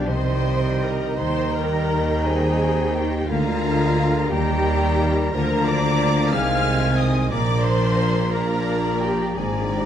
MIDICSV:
0, 0, Header, 1, 13, 480
1, 0, Start_track
1, 0, Tempo, 747198
1, 770, Time_signature, 6, 3, 24, 8
1, 770, Tempo, 703400
1, 1730, Tempo, 683371
1, 3650, Tempo, 666667
1, 6050, Tempo, 708383
1, 6851, End_track
2, 0, Start_track
2, 0, Title_t, "Flute section"
2, 0, Program_c, 0, 73
2, 45, Note_on_c, 0, 84, 98
2, 361, Note_off_c, 0, 84, 0
2, 525, Note_on_c, 0, 82, 97
2, 756, Note_on_c, 0, 84, 94
2, 758, Note_off_c, 0, 82, 0
2, 993, Note_on_c, 0, 82, 95
2, 1007, Note_off_c, 0, 84, 0
2, 1480, Note_on_c, 0, 80, 97
2, 1485, Note_off_c, 0, 82, 0
2, 1965, Note_off_c, 0, 80, 0
2, 1966, Note_on_c, 0, 79, 93
2, 2210, Note_off_c, 0, 79, 0
2, 2211, Note_on_c, 0, 77, 116
2, 2916, Note_off_c, 0, 77, 0
2, 2920, Note_on_c, 0, 79, 119
2, 3468, Note_off_c, 0, 79, 0
2, 3636, Note_on_c, 0, 82, 117
2, 3874, Note_off_c, 0, 82, 0
2, 3874, Note_on_c, 0, 86, 112
2, 4354, Note_on_c, 0, 89, 119
2, 4361, Note_off_c, 0, 86, 0
2, 4827, Note_on_c, 0, 87, 96
2, 4834, Note_off_c, 0, 89, 0
2, 5058, Note_on_c, 0, 86, 114
2, 5073, Note_off_c, 0, 87, 0
2, 5306, Note_off_c, 0, 86, 0
2, 5310, Note_on_c, 0, 84, 104
2, 5779, Note_on_c, 0, 82, 108
2, 5798, Note_off_c, 0, 84, 0
2, 6272, Note_on_c, 0, 79, 101
2, 6277, Note_off_c, 0, 82, 0
2, 6510, Note_on_c, 0, 80, 91
2, 6522, Note_off_c, 0, 79, 0
2, 6750, Note_on_c, 0, 79, 97
2, 6755, Note_off_c, 0, 80, 0
2, 6851, Note_off_c, 0, 79, 0
2, 6851, End_track
3, 0, Start_track
3, 0, Title_t, "Trumpet section"
3, 0, Program_c, 1, 61
3, 50, Note_on_c, 1, 79, 77
3, 753, Note_off_c, 1, 79, 0
3, 765, Note_on_c, 1, 82, 86
3, 2097, Note_off_c, 1, 82, 0
3, 2216, Note_on_c, 1, 82, 86
3, 2919, Note_off_c, 1, 82, 0
3, 2929, Note_on_c, 1, 82, 88
3, 3634, Note_off_c, 1, 82, 0
3, 3643, Note_on_c, 1, 82, 93
3, 4349, Note_off_c, 1, 82, 0
3, 4362, Note_on_c, 1, 80, 88
3, 5075, Note_on_c, 1, 82, 83
3, 5077, Note_off_c, 1, 80, 0
3, 5794, Note_off_c, 1, 82, 0
3, 5803, Note_on_c, 1, 82, 87
3, 6515, Note_off_c, 1, 82, 0
3, 6528, Note_on_c, 1, 82, 87
3, 6851, Note_off_c, 1, 82, 0
3, 6851, End_track
4, 0, Start_track
4, 0, Title_t, "Violin section"
4, 0, Program_c, 2, 48
4, 58, Note_on_c, 2, 84, 94
4, 531, Note_off_c, 2, 84, 0
4, 532, Note_on_c, 2, 82, 85
4, 759, Note_on_c, 2, 84, 96
4, 767, Note_off_c, 2, 82, 0
4, 998, Note_on_c, 2, 82, 95
4, 1009, Note_off_c, 2, 84, 0
4, 1480, Note_on_c, 2, 80, 94
4, 1488, Note_off_c, 2, 82, 0
4, 1955, Note_off_c, 2, 80, 0
4, 1965, Note_on_c, 2, 79, 92
4, 2198, Note_on_c, 2, 77, 114
4, 2210, Note_off_c, 2, 79, 0
4, 2924, Note_off_c, 2, 77, 0
4, 2929, Note_on_c, 2, 79, 113
4, 3638, Note_on_c, 2, 82, 105
4, 3649, Note_off_c, 2, 79, 0
4, 3874, Note_on_c, 2, 86, 121
4, 3875, Note_off_c, 2, 82, 0
4, 4354, Note_on_c, 2, 89, 126
4, 4361, Note_off_c, 2, 86, 0
4, 4834, Note_off_c, 2, 89, 0
4, 4837, Note_on_c, 2, 87, 99
4, 5058, Note_on_c, 2, 86, 112
4, 5078, Note_off_c, 2, 87, 0
4, 5293, Note_on_c, 2, 84, 111
4, 5306, Note_off_c, 2, 86, 0
4, 5789, Note_off_c, 2, 84, 0
4, 5798, Note_on_c, 2, 82, 108
4, 6285, Note_on_c, 2, 79, 93
4, 6286, Note_off_c, 2, 82, 0
4, 6528, Note_off_c, 2, 79, 0
4, 6528, Note_on_c, 2, 80, 85
4, 6764, Note_off_c, 2, 80, 0
4, 6770, Note_on_c, 2, 79, 102
4, 6851, Note_off_c, 2, 79, 0
4, 6851, End_track
5, 0, Start_track
5, 0, Title_t, "Violin section"
5, 0, Program_c, 3, 48
5, 57, Note_on_c, 3, 75, 81
5, 763, Note_on_c, 3, 79, 91
5, 771, Note_off_c, 3, 75, 0
5, 2182, Note_off_c, 3, 79, 0
5, 2229, Note_on_c, 3, 82, 95
5, 2933, Note_off_c, 3, 82, 0
5, 2942, Note_on_c, 3, 82, 96
5, 3640, Note_off_c, 3, 82, 0
5, 3653, Note_on_c, 3, 82, 98
5, 4355, Note_off_c, 3, 82, 0
5, 4363, Note_on_c, 3, 80, 104
5, 5075, Note_on_c, 3, 74, 106
5, 5078, Note_off_c, 3, 80, 0
5, 5787, Note_off_c, 3, 74, 0
5, 5800, Note_on_c, 3, 74, 98
5, 6502, Note_off_c, 3, 74, 0
5, 6510, Note_on_c, 3, 74, 100
5, 6851, Note_off_c, 3, 74, 0
5, 6851, End_track
6, 0, Start_track
6, 0, Title_t, "Viola section"
6, 0, Program_c, 4, 48
6, 48, Note_on_c, 4, 72, 110
6, 532, Note_on_c, 4, 70, 100
6, 535, Note_off_c, 4, 72, 0
6, 754, Note_on_c, 4, 72, 119
6, 767, Note_off_c, 4, 70, 0
6, 1001, Note_off_c, 4, 72, 0
6, 1008, Note_on_c, 4, 70, 112
6, 1493, Note_off_c, 4, 70, 0
6, 1498, Note_on_c, 4, 68, 119
6, 1970, Note_on_c, 4, 67, 105
6, 1974, Note_off_c, 4, 68, 0
6, 2211, Note_on_c, 4, 65, 127
6, 2213, Note_off_c, 4, 67, 0
6, 2916, Note_off_c, 4, 65, 0
6, 2925, Note_on_c, 4, 67, 127
6, 3638, Note_on_c, 4, 70, 127
6, 3646, Note_off_c, 4, 67, 0
6, 3874, Note_on_c, 4, 74, 127
6, 3875, Note_off_c, 4, 70, 0
6, 4350, Note_on_c, 4, 77, 124
6, 4362, Note_off_c, 4, 74, 0
6, 4832, Note_off_c, 4, 77, 0
6, 4833, Note_on_c, 4, 75, 111
6, 5069, Note_on_c, 4, 74, 127
6, 5076, Note_off_c, 4, 75, 0
6, 5304, Note_on_c, 4, 72, 127
6, 5317, Note_off_c, 4, 74, 0
6, 5793, Note_on_c, 4, 70, 124
6, 5795, Note_off_c, 4, 72, 0
6, 6274, Note_off_c, 4, 70, 0
6, 6281, Note_on_c, 4, 67, 116
6, 6519, Note_on_c, 4, 68, 103
6, 6526, Note_off_c, 4, 67, 0
6, 6764, Note_off_c, 4, 68, 0
6, 6774, Note_on_c, 4, 67, 106
6, 6851, Note_off_c, 4, 67, 0
6, 6851, End_track
7, 0, Start_track
7, 0, Title_t, "Harp"
7, 0, Program_c, 5, 46
7, 0, Note_on_c, 5, 47, 71
7, 0, Note_on_c, 5, 53, 52
7, 0, Note_on_c, 5, 55, 59
7, 0, Note_on_c, 5, 65, 56
7, 0, Note_on_c, 5, 67, 63
7, 0, Note_on_c, 5, 74, 68
7, 45, Note_on_c, 5, 48, 68
7, 72, Note_off_c, 5, 65, 0
7, 73, Note_off_c, 5, 74, 0
7, 74, Note_off_c, 5, 47, 0
7, 74, Note_off_c, 5, 53, 0
7, 180, Note_on_c, 5, 60, 56
7, 291, Note_off_c, 5, 55, 0
7, 298, Note_on_c, 5, 55, 61
7, 419, Note_on_c, 5, 63, 58
7, 532, Note_on_c, 5, 75, 67
7, 643, Note_off_c, 5, 67, 0
7, 651, Note_on_c, 5, 67, 62
7, 768, Note_on_c, 5, 51, 76
7, 785, Note_off_c, 5, 48, 0
7, 789, Note_off_c, 5, 60, 0
7, 885, Note_off_c, 5, 55, 0
7, 1008, Note_off_c, 5, 63, 0
7, 1016, Note_on_c, 5, 63, 68
7, 1141, Note_on_c, 5, 70, 68
7, 1251, Note_off_c, 5, 67, 0
7, 1370, Note_off_c, 5, 75, 0
7, 1378, Note_on_c, 5, 75, 69
7, 1500, Note_on_c, 5, 82, 67
7, 1721, Note_off_c, 5, 82, 0
7, 1730, Note_on_c, 5, 82, 72
7, 1844, Note_off_c, 5, 75, 0
7, 1852, Note_on_c, 5, 75, 72
7, 1979, Note_on_c, 5, 67, 75
7, 2086, Note_off_c, 5, 63, 0
7, 2095, Note_on_c, 5, 63, 67
7, 2218, Note_on_c, 5, 50, 91
7, 2232, Note_off_c, 5, 51, 0
7, 2233, Note_off_c, 5, 63, 0
7, 2233, Note_off_c, 5, 75, 0
7, 2236, Note_off_c, 5, 67, 0
7, 2343, Note_on_c, 5, 56, 67
7, 2459, Note_on_c, 5, 58, 72
7, 2583, Note_on_c, 5, 68, 71
7, 2688, Note_off_c, 5, 70, 0
7, 2696, Note_on_c, 5, 70, 75
7, 2805, Note_off_c, 5, 68, 0
7, 2813, Note_on_c, 5, 68, 78
7, 2935, Note_on_c, 5, 51, 84
7, 2953, Note_off_c, 5, 50, 0
7, 2953, Note_off_c, 5, 68, 0
7, 2957, Note_off_c, 5, 56, 0
7, 3063, Note_on_c, 5, 63, 65
7, 3172, Note_off_c, 5, 58, 0
7, 3180, Note_on_c, 5, 58, 69
7, 3303, Note_on_c, 5, 67, 76
7, 3418, Note_off_c, 5, 70, 0
7, 3426, Note_on_c, 5, 70, 80
7, 3533, Note_off_c, 5, 67, 0
7, 3542, Note_on_c, 5, 67, 76
7, 3659, Note_on_c, 5, 50, 97
7, 3670, Note_off_c, 5, 51, 0
7, 3673, Note_off_c, 5, 67, 0
7, 3674, Note_off_c, 5, 63, 0
7, 3784, Note_on_c, 5, 62, 76
7, 3890, Note_off_c, 5, 58, 0
7, 3899, Note_on_c, 5, 58, 75
7, 4014, Note_on_c, 5, 65, 71
7, 4118, Note_off_c, 5, 70, 0
7, 4126, Note_on_c, 5, 70, 82
7, 4247, Note_off_c, 5, 65, 0
7, 4255, Note_on_c, 5, 65, 78
7, 4374, Note_on_c, 5, 48, 90
7, 4386, Note_off_c, 5, 82, 0
7, 4387, Note_off_c, 5, 70, 0
7, 4391, Note_off_c, 5, 50, 0
7, 4391, Note_off_c, 5, 65, 0
7, 4393, Note_off_c, 5, 58, 0
7, 4394, Note_off_c, 5, 62, 0
7, 4493, Note_on_c, 5, 56, 66
7, 4607, Note_on_c, 5, 60, 66
7, 4727, Note_on_c, 5, 63, 72
7, 4842, Note_on_c, 5, 68, 75
7, 4962, Note_on_c, 5, 72, 77
7, 5082, Note_on_c, 5, 46, 92
7, 5100, Note_off_c, 5, 60, 0
7, 5100, Note_off_c, 5, 68, 0
7, 5100, Note_off_c, 5, 72, 0
7, 5101, Note_off_c, 5, 63, 0
7, 5102, Note_off_c, 5, 48, 0
7, 5102, Note_off_c, 5, 56, 0
7, 5202, Note_on_c, 5, 53, 65
7, 5322, Note_on_c, 5, 62, 75
7, 5438, Note_on_c, 5, 65, 69
7, 5563, Note_on_c, 5, 70, 72
7, 5677, Note_on_c, 5, 74, 77
7, 5805, Note_on_c, 5, 77, 73
7, 5926, Note_on_c, 5, 82, 71
7, 6043, Note_off_c, 5, 77, 0
7, 6051, Note_on_c, 5, 77, 81
7, 6161, Note_off_c, 5, 74, 0
7, 6169, Note_on_c, 5, 74, 74
7, 6281, Note_off_c, 5, 70, 0
7, 6289, Note_on_c, 5, 70, 72
7, 6399, Note_off_c, 5, 62, 0
7, 6407, Note_on_c, 5, 62, 69
7, 6530, Note_on_c, 5, 44, 85
7, 6550, Note_off_c, 5, 46, 0
7, 6649, Note_on_c, 5, 56, 64
7, 6759, Note_off_c, 5, 62, 0
7, 6768, Note_on_c, 5, 62, 69
7, 6851, Note_off_c, 5, 44, 0
7, 6851, Note_off_c, 5, 53, 0
7, 6851, Note_off_c, 5, 56, 0
7, 6851, Note_off_c, 5, 62, 0
7, 6851, Note_off_c, 5, 65, 0
7, 6851, Note_off_c, 5, 70, 0
7, 6851, Note_off_c, 5, 74, 0
7, 6851, Note_off_c, 5, 77, 0
7, 6851, Note_off_c, 5, 82, 0
7, 6851, End_track
8, 0, Start_track
8, 0, Title_t, "French horn section"
8, 0, Program_c, 6, 60
8, 40, Note_on_c, 6, 55, 75
8, 43, Note_on_c, 6, 67, 81
8, 749, Note_off_c, 6, 55, 0
8, 750, Note_off_c, 6, 67, 0
8, 766, Note_on_c, 6, 55, 89
8, 770, Note_on_c, 6, 63, 88
8, 2183, Note_off_c, 6, 55, 0
8, 2186, Note_off_c, 6, 63, 0
8, 2215, Note_on_c, 6, 65, 87
8, 2223, Note_on_c, 6, 58, 84
8, 2825, Note_off_c, 6, 58, 0
8, 2825, Note_off_c, 6, 65, 0
8, 2944, Note_on_c, 6, 58, 93
8, 2944, Note_on_c, 6, 63, 98
8, 3635, Note_off_c, 6, 58, 0
8, 3638, Note_on_c, 6, 65, 95
8, 3642, Note_off_c, 6, 63, 0
8, 3644, Note_on_c, 6, 58, 94
8, 4347, Note_off_c, 6, 65, 0
8, 4350, Note_off_c, 6, 58, 0
8, 4354, Note_on_c, 6, 60, 91
8, 4367, Note_on_c, 6, 63, 96
8, 5057, Note_on_c, 6, 58, 94
8, 5064, Note_on_c, 6, 62, 93
8, 5073, Note_off_c, 6, 60, 0
8, 5080, Note_off_c, 6, 63, 0
8, 5778, Note_off_c, 6, 58, 0
8, 5781, Note_off_c, 6, 62, 0
8, 5790, Note_on_c, 6, 62, 85
8, 5795, Note_on_c, 6, 58, 94
8, 6508, Note_off_c, 6, 62, 0
8, 6511, Note_off_c, 6, 58, 0
8, 6522, Note_on_c, 6, 62, 86
8, 6525, Note_on_c, 6, 58, 90
8, 6851, Note_off_c, 6, 58, 0
8, 6851, Note_off_c, 6, 62, 0
8, 6851, End_track
9, 0, Start_track
9, 0, Title_t, "Bassoon"
9, 0, Program_c, 7, 70
9, 54, Note_on_c, 7, 63, 105
9, 1496, Note_on_c, 7, 60, 111
9, 1506, Note_off_c, 7, 63, 0
9, 2039, Note_off_c, 7, 60, 0
9, 2221, Note_on_c, 7, 58, 87
9, 2941, Note_on_c, 7, 55, 110
9, 2951, Note_off_c, 7, 58, 0
9, 3649, Note_off_c, 7, 55, 0
9, 3654, Note_on_c, 7, 53, 105
9, 4364, Note_on_c, 7, 56, 104
9, 4375, Note_off_c, 7, 53, 0
9, 5075, Note_off_c, 7, 56, 0
9, 5079, Note_on_c, 7, 58, 109
9, 6329, Note_off_c, 7, 58, 0
9, 6528, Note_on_c, 7, 60, 101
9, 6851, Note_off_c, 7, 60, 0
9, 6851, End_track
10, 0, Start_track
10, 0, Title_t, "Trombone section"
10, 0, Program_c, 8, 61
10, 41, Note_on_c, 8, 51, 80
10, 45, Note_on_c, 8, 55, 84
10, 749, Note_off_c, 8, 55, 0
10, 756, Note_on_c, 8, 55, 82
10, 757, Note_off_c, 8, 51, 0
10, 765, Note_on_c, 8, 51, 85
10, 2100, Note_off_c, 8, 51, 0
10, 2100, Note_off_c, 8, 55, 0
10, 2219, Note_on_c, 8, 56, 91
10, 2224, Note_on_c, 8, 50, 94
10, 2899, Note_on_c, 8, 51, 94
10, 2909, Note_on_c, 8, 55, 96
10, 2920, Note_off_c, 8, 56, 0
10, 2923, Note_off_c, 8, 50, 0
10, 3619, Note_off_c, 8, 51, 0
10, 3638, Note_off_c, 8, 55, 0
10, 3645, Note_on_c, 8, 53, 93
10, 3648, Note_on_c, 8, 50, 99
10, 3989, Note_on_c, 8, 55, 80
10, 3995, Note_off_c, 8, 53, 0
10, 4352, Note_off_c, 8, 55, 0
10, 4357, Note_on_c, 8, 51, 93
10, 4363, Note_on_c, 8, 56, 95
10, 4366, Note_off_c, 8, 50, 0
10, 5075, Note_off_c, 8, 51, 0
10, 5078, Note_off_c, 8, 56, 0
10, 5078, Note_on_c, 8, 46, 102
10, 5080, Note_on_c, 8, 53, 94
10, 5789, Note_off_c, 8, 46, 0
10, 5804, Note_off_c, 8, 53, 0
10, 5809, Note_on_c, 8, 46, 91
10, 5815, Note_on_c, 8, 53, 94
10, 6422, Note_off_c, 8, 46, 0
10, 6422, Note_off_c, 8, 53, 0
10, 6538, Note_on_c, 8, 46, 90
10, 6544, Note_on_c, 8, 53, 90
10, 6851, Note_off_c, 8, 46, 0
10, 6851, Note_off_c, 8, 53, 0
10, 6851, End_track
11, 0, Start_track
11, 0, Title_t, "Cello section"
11, 0, Program_c, 10, 48
11, 57, Note_on_c, 10, 48, 83
11, 771, Note_off_c, 10, 48, 0
11, 779, Note_on_c, 10, 51, 82
11, 2190, Note_off_c, 10, 51, 0
11, 2219, Note_on_c, 10, 50, 93
11, 2934, Note_off_c, 10, 50, 0
11, 2940, Note_on_c, 10, 51, 89
11, 3640, Note_off_c, 10, 51, 0
11, 3653, Note_on_c, 10, 50, 99
11, 4354, Note_off_c, 10, 50, 0
11, 4364, Note_on_c, 10, 48, 97
11, 5074, Note_on_c, 10, 46, 97
11, 5078, Note_off_c, 10, 48, 0
11, 6500, Note_off_c, 10, 46, 0
11, 6524, Note_on_c, 10, 44, 96
11, 6851, Note_off_c, 10, 44, 0
11, 6851, End_track
12, 0, Start_track
12, 0, Title_t, "Double bass section"
12, 0, Program_c, 11, 48
12, 49, Note_on_c, 11, 36, 78
12, 768, Note_off_c, 11, 36, 0
12, 773, Note_on_c, 11, 39, 90
12, 2188, Note_off_c, 11, 39, 0
12, 2216, Note_on_c, 11, 38, 92
12, 2928, Note_on_c, 11, 39, 99
12, 2933, Note_off_c, 11, 38, 0
12, 3633, Note_off_c, 11, 39, 0
12, 3650, Note_on_c, 11, 38, 89
12, 4353, Note_off_c, 11, 38, 0
12, 4373, Note_on_c, 11, 36, 99
12, 5083, Note_off_c, 11, 36, 0
12, 5084, Note_on_c, 11, 34, 94
12, 6504, Note_off_c, 11, 34, 0
12, 6524, Note_on_c, 11, 32, 81
12, 6851, Note_off_c, 11, 32, 0
12, 6851, End_track
13, 0, Start_track
13, 0, Title_t, "Tuba"
13, 0, Program_c, 12, 58
13, 54, Note_on_c, 12, 36, 74
13, 768, Note_off_c, 12, 36, 0
13, 772, Note_on_c, 12, 39, 93
13, 2219, Note_on_c, 12, 38, 96
13, 2230, Note_off_c, 12, 39, 0
13, 2929, Note_off_c, 12, 38, 0
13, 2933, Note_on_c, 12, 39, 99
13, 3531, Note_off_c, 12, 39, 0
13, 3651, Note_on_c, 12, 38, 100
13, 4365, Note_on_c, 12, 36, 91
13, 4376, Note_off_c, 12, 38, 0
13, 5079, Note_off_c, 12, 36, 0
13, 5085, Note_on_c, 12, 34, 97
13, 6505, Note_off_c, 12, 34, 0
13, 6525, Note_on_c, 12, 32, 89
13, 6851, Note_off_c, 12, 32, 0
13, 6851, End_track
0, 0, End_of_file